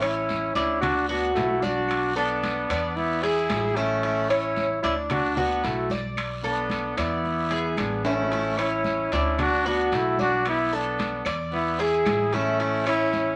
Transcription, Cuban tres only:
0, 0, Header, 1, 2, 480
1, 0, Start_track
1, 0, Key_signature, 3, "major"
1, 0, Tempo, 535236
1, 1697, Time_signature, 4, 2, 24, 8
1, 11980, End_track
2, 0, Start_track
2, 0, Title_t, "Cuban tres"
2, 0, Program_c, 0, 25
2, 15, Note_on_c, 0, 73, 74
2, 482, Note_off_c, 0, 73, 0
2, 497, Note_on_c, 0, 62, 82
2, 963, Note_off_c, 0, 62, 0
2, 978, Note_on_c, 0, 66, 75
2, 1443, Note_off_c, 0, 66, 0
2, 1456, Note_on_c, 0, 74, 76
2, 1922, Note_off_c, 0, 74, 0
2, 1939, Note_on_c, 0, 69, 83
2, 2404, Note_off_c, 0, 69, 0
2, 2428, Note_on_c, 0, 74, 76
2, 2888, Note_off_c, 0, 74, 0
2, 2901, Note_on_c, 0, 68, 83
2, 3365, Note_off_c, 0, 68, 0
2, 3381, Note_on_c, 0, 64, 86
2, 3606, Note_off_c, 0, 64, 0
2, 3617, Note_on_c, 0, 64, 73
2, 3850, Note_off_c, 0, 64, 0
2, 3857, Note_on_c, 0, 73, 78
2, 4323, Note_off_c, 0, 73, 0
2, 4338, Note_on_c, 0, 62, 84
2, 4803, Note_off_c, 0, 62, 0
2, 4818, Note_on_c, 0, 66, 74
2, 5283, Note_off_c, 0, 66, 0
2, 5298, Note_on_c, 0, 74, 73
2, 5764, Note_off_c, 0, 74, 0
2, 5775, Note_on_c, 0, 69, 76
2, 6242, Note_off_c, 0, 69, 0
2, 6258, Note_on_c, 0, 74, 70
2, 6724, Note_off_c, 0, 74, 0
2, 6734, Note_on_c, 0, 68, 79
2, 7201, Note_off_c, 0, 68, 0
2, 7216, Note_on_c, 0, 64, 82
2, 7450, Note_off_c, 0, 64, 0
2, 7468, Note_on_c, 0, 64, 77
2, 7694, Note_off_c, 0, 64, 0
2, 7698, Note_on_c, 0, 73, 80
2, 8163, Note_off_c, 0, 73, 0
2, 8186, Note_on_c, 0, 62, 85
2, 8647, Note_off_c, 0, 62, 0
2, 8661, Note_on_c, 0, 66, 80
2, 9125, Note_off_c, 0, 66, 0
2, 9138, Note_on_c, 0, 74, 70
2, 9603, Note_off_c, 0, 74, 0
2, 9621, Note_on_c, 0, 69, 83
2, 10085, Note_off_c, 0, 69, 0
2, 10096, Note_on_c, 0, 74, 79
2, 10561, Note_off_c, 0, 74, 0
2, 10577, Note_on_c, 0, 68, 81
2, 11041, Note_off_c, 0, 68, 0
2, 11062, Note_on_c, 0, 64, 83
2, 11288, Note_off_c, 0, 64, 0
2, 11298, Note_on_c, 0, 64, 79
2, 11529, Note_off_c, 0, 64, 0
2, 11538, Note_on_c, 0, 73, 77
2, 11980, Note_off_c, 0, 73, 0
2, 11980, End_track
0, 0, End_of_file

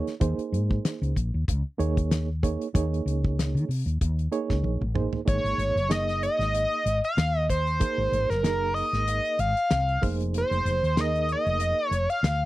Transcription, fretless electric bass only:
0, 0, Header, 1, 3, 480
1, 0, Start_track
1, 0, Tempo, 633580
1, 157, Time_signature, 4, 2, 24, 8
1, 9435, End_track
2, 0, Start_track
2, 0, Title_t, "Fretless electric bass"
2, 0, Program_c, 0, 35
2, 161, Note_on_c, 0, 39, 86
2, 266, Note_off_c, 0, 39, 0
2, 397, Note_on_c, 0, 44, 80
2, 590, Note_off_c, 0, 44, 0
2, 770, Note_on_c, 0, 37, 86
2, 856, Note_off_c, 0, 37, 0
2, 882, Note_on_c, 0, 34, 83
2, 986, Note_off_c, 0, 34, 0
2, 1015, Note_on_c, 0, 39, 74
2, 1099, Note_off_c, 0, 39, 0
2, 1120, Note_on_c, 0, 37, 85
2, 1225, Note_off_c, 0, 37, 0
2, 1358, Note_on_c, 0, 39, 84
2, 1936, Note_off_c, 0, 39, 0
2, 2082, Note_on_c, 0, 39, 104
2, 2272, Note_off_c, 0, 39, 0
2, 2315, Note_on_c, 0, 37, 86
2, 2687, Note_on_c, 0, 51, 88
2, 2699, Note_off_c, 0, 37, 0
2, 2773, Note_off_c, 0, 51, 0
2, 2792, Note_on_c, 0, 48, 77
2, 2899, Note_off_c, 0, 48, 0
2, 2923, Note_on_c, 0, 39, 82
2, 3011, Note_off_c, 0, 39, 0
2, 3041, Note_on_c, 0, 39, 83
2, 3231, Note_off_c, 0, 39, 0
2, 3407, Note_on_c, 0, 37, 84
2, 3493, Note_off_c, 0, 37, 0
2, 3509, Note_on_c, 0, 34, 87
2, 3618, Note_off_c, 0, 34, 0
2, 3642, Note_on_c, 0, 33, 71
2, 3837, Note_off_c, 0, 33, 0
2, 3996, Note_on_c, 0, 32, 91
2, 4102, Note_off_c, 0, 32, 0
2, 4121, Note_on_c, 0, 32, 80
2, 4209, Note_off_c, 0, 32, 0
2, 4225, Note_on_c, 0, 32, 78
2, 4335, Note_off_c, 0, 32, 0
2, 4360, Note_on_c, 0, 30, 72
2, 4749, Note_off_c, 0, 30, 0
2, 4840, Note_on_c, 0, 32, 69
2, 5036, Note_off_c, 0, 32, 0
2, 5194, Note_on_c, 0, 32, 83
2, 5301, Note_off_c, 0, 32, 0
2, 5433, Note_on_c, 0, 39, 88
2, 5927, Note_off_c, 0, 39, 0
2, 6043, Note_on_c, 0, 32, 80
2, 6131, Note_off_c, 0, 32, 0
2, 6152, Note_on_c, 0, 32, 78
2, 6260, Note_off_c, 0, 32, 0
2, 6289, Note_on_c, 0, 30, 67
2, 6675, Note_off_c, 0, 30, 0
2, 6765, Note_on_c, 0, 32, 71
2, 6959, Note_off_c, 0, 32, 0
2, 7113, Note_on_c, 0, 32, 82
2, 7220, Note_off_c, 0, 32, 0
2, 7356, Note_on_c, 0, 36, 86
2, 7549, Note_off_c, 0, 36, 0
2, 7596, Note_on_c, 0, 29, 83
2, 7896, Note_off_c, 0, 29, 0
2, 7963, Note_on_c, 0, 29, 84
2, 8051, Note_off_c, 0, 29, 0
2, 8070, Note_on_c, 0, 29, 85
2, 8179, Note_off_c, 0, 29, 0
2, 8203, Note_on_c, 0, 39, 65
2, 8592, Note_off_c, 0, 39, 0
2, 8685, Note_on_c, 0, 29, 81
2, 8880, Note_off_c, 0, 29, 0
2, 9024, Note_on_c, 0, 29, 84
2, 9135, Note_off_c, 0, 29, 0
2, 9265, Note_on_c, 0, 38, 91
2, 9435, Note_off_c, 0, 38, 0
2, 9435, End_track
3, 0, Start_track
3, 0, Title_t, "Muted fretless electric bass strokes"
3, 288, Note_on_c, 9, 29, 37
3, 363, Note_off_c, 9, 29, 0
3, 9435, End_track
0, 0, End_of_file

